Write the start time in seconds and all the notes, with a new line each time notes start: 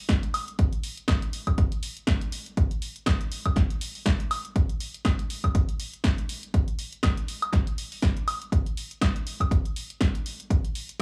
0.09 kick, snare, closed hi-hat
0.23 closed hi-hat
0.34 open hi-hat, high woodblock
0.48 closed hi-hat
0.59 kick, closed hi-hat
0.73 closed hi-hat
0.83 open hi-hat
0.97 closed hi-hat
1.08 kick, snare, closed hi-hat, high woodblock
1.22 closed hi-hat
1.33 open hi-hat
1.47 kick, closed hi-hat, high woodblock
1.58 kick, closed hi-hat
1.72 closed hi-hat
1.83 open hi-hat
1.97 closed hi-hat
2.07 kick, snare, closed hi-hat
2.21 closed hi-hat
2.32 open hi-hat
2.46 closed hi-hat
2.57 kick, closed hi-hat
2.71 closed hi-hat
2.82 open hi-hat
2.96 closed hi-hat
3.06 kick, snare, closed hi-hat, high woodblock
3.21 closed hi-hat
3.32 open hi-hat
3.46 kick, closed hi-hat, high woodblock
3.56 kick, snare, closed hi-hat
3.70 closed hi-hat
3.81 open hi-hat
3.95 open hi-hat
4.06 kick, snare, closed hi-hat
4.20 closed hi-hat
4.31 open hi-hat, high woodblock
4.45 closed hi-hat
4.56 kick, closed hi-hat
4.69 closed hi-hat
4.80 open hi-hat
4.94 closed hi-hat
5.05 kick, snare, closed hi-hat, high woodblock
5.19 closed hi-hat
5.30 open hi-hat
5.44 kick, closed hi-hat, high woodblock
5.55 kick, closed hi-hat
5.69 closed hi-hat
5.80 open hi-hat
5.94 closed hi-hat
6.04 kick, snare, closed hi-hat
6.18 closed hi-hat
6.29 open hi-hat
6.43 closed hi-hat
6.54 kick, closed hi-hat
6.68 closed hi-hat
6.79 open hi-hat
6.92 closed hi-hat
7.03 kick, snare, closed hi-hat, high woodblock
7.17 closed hi-hat
7.28 open hi-hat
7.42 closed hi-hat, high woodblock
7.53 kick, snare, closed hi-hat
7.67 closed hi-hat
7.78 open hi-hat
7.92 open hi-hat
8.02 kick, snare, closed hi-hat
8.17 closed hi-hat
8.28 open hi-hat, high woodblock
8.42 closed hi-hat
8.52 kick, closed hi-hat
8.66 closed hi-hat
8.77 open hi-hat
8.91 closed hi-hat
9.01 kick, snare, closed hi-hat, high woodblock
9.16 closed hi-hat
9.27 open hi-hat
9.40 kick, closed hi-hat, high woodblock
9.51 kick, closed hi-hat
9.65 closed hi-hat
9.76 open hi-hat
9.90 closed hi-hat
10.01 kick, snare, closed hi-hat
10.15 closed hi-hat
10.26 open hi-hat
10.40 closed hi-hat
10.50 kick, closed hi-hat
10.65 closed hi-hat
10.75 open hi-hat
10.89 closed hi-hat